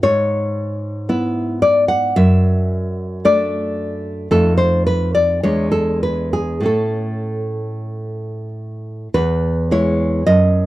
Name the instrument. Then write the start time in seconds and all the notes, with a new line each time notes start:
nylon-string guitar
0.03 G#2 C#5
1.09 B3 E4
1.62 D5
1.88 F#5
2.16 F#2 E5
3.25 A3 D4 D5
4.31 F2 A3 D#4 A4
4.58 C5
4.87 B4
5.15 D5
5.43 E2 G#3 D4 C#5
5.72 A4
6.03 B4
6.33 G#4
6.61 A2 A3 C#4
6.66 A4
9.14 E2 B4
9.71 G#3 E4 C#5
10.27 F#2 D#5